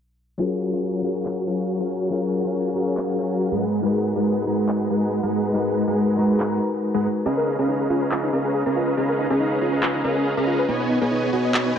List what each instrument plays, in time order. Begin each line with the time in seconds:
0.38 tine electric piano F#3 C#4 F4 G#4, supersaw synth F#4 C#5 F5 G#5 A#5
0.42 tine electric piano A#4
0.73 supersaw synth F#4 C#5 F5 G#5 A#5
1.02 tine electric piano F#3 C#4 G#4 F5, supersaw synth F#4 C#5 F5 G#5 A#5
1.06 tine electric piano A#4
1.26 clap
1.47 supersaw synth F#4 C#5 F5 G#5 A#5
1.80 supersaw synth F#4 C#5 F5 G#5 A#5
2.10 tine electric piano F#3 C#4 F4 G#4 A#4, supersaw synth F#4 C#5 F5 G#5 A#5
2.45 supersaw synth F#4 C#5 F5 G#5 A#5
2.74 tine electric piano F#3 C#4 G#4 F5, supersaw synth F#4 C#5 F5 G#5 A#5
2.78 tine electric piano A#4
2.97 clap
3.19 supersaw synth F#4 C#5 F5 G#5 A#5
3.52 supersaw synth G#3 G#4 B4 F#5 A#5
3.81 tine electric piano G#3 D#4 F#4 A#4, supersaw synth G#3 G#4 B4 F#5 A#5
3.85 tine electric piano B4
4.16 supersaw synth G#3 G#4 B4 F#5 A#5
4.45 tine electric piano G#3 D#4 F#4 B4 A#5, supersaw synth G#3 G#4 B4 F#5 A#5
4.69 clap
4.90 supersaw synth G#3 G#4 B4 F#5 A#5
5.23 supersaw synth G#3 G#4 B4 F#5 A#5
5.53 tine electric piano G#3 D#4 F#4 A#4 B4, supersaw synth G#3 G#4 B4 F#5 A#5
5.87 supersaw synth G#3 G#4 B4 F#5 A#5
6.17 tine electric piano G#3 D#4 F#4 B4 A#5, supersaw synth G#3 G#4 B4 F#5 A#5
6.40 clap
6.94 supersaw synth G#3 G#4 B4 F#5 A#5
7.26 supersaw synth C#4 G#4 B4 D#5 F5 A#5, synth arpeggio sound D#4
7.37 synth arpeggio sound A#4
7.47 synth arpeggio sound D#4
7.59 supersaw synth C#4 G#4 B4 D#5 F5 A#5, synth arpeggio sound G#4
7.69 synth arpeggio sound D#4
7.80 synth arpeggio sound G#4
7.90 supersaw synth C#4 G#4 B4 D#5 F5 A#5, synth arpeggio sound F4
8.02 synth arpeggio sound B4
8.11 synth arpeggio sound F4, clap
8.23 synth arpeggio sound D#4
8.33 supersaw synth C#4 G#4 B4 D#5 F5 A#5, synth arpeggio sound A#4
8.45 synth arpeggio sound G#4
8.54 synth arpeggio sound G#4
8.66 supersaw synth C#4 G#4 B4 D#5 F5 A#5, synth arpeggio sound A#4
8.76 synth arpeggio sound F4
8.87 synth arpeggio sound B4
8.97 supersaw synth C#4 G#4 B4 D#5 F5 A#5, synth arpeggio sound D#4
9.09 synth arpeggio sound A#4
9.19 synth arpeggio sound D#4
9.30 supersaw synth C#4 G#4 B4 D#5 F5 A#5, synth arpeggio sound G#4
9.40 synth arpeggio sound D#4
9.52 synth arpeggio sound G#4
9.61 supersaw synth C#4 G#4 B4 D#5 F5 A#5, synth arpeggio sound F4
9.73 synth arpeggio sound B4
9.83 synth arpeggio sound F4, clap
9.95 synth arpeggio sound D#4
10.04 supersaw synth C#4 G#4 B4 D#5 F5 A#5, synth arpeggio sound A#4
10.16 synth arpeggio sound G#4
10.26 synth arpeggio sound G#4
10.37 supersaw synth C#4 G#4 B4 D#5 F5 A#5, synth arpeggio sound A#4
10.47 synth arpeggio sound F4
10.59 synth arpeggio sound B4
10.68 supersaw synth B3 B4 C#5 D#5 G#5, synth arpeggio sound D#4
10.80 synth arpeggio sound B4
10.90 synth arpeggio sound D#4
11.02 supersaw synth B3 B4 C#5 D#5 G#5, synth arpeggio sound G#4
11.11 synth arpeggio sound D#4
11.23 synth arpeggio sound G#4
11.33 supersaw synth B3 B4 C#5 D#5 G#5, synth arpeggio sound F#4
11.45 synth arpeggio sound D#5
11.54 synth arpeggio sound F#4, clap
11.66 synth arpeggio sound D#4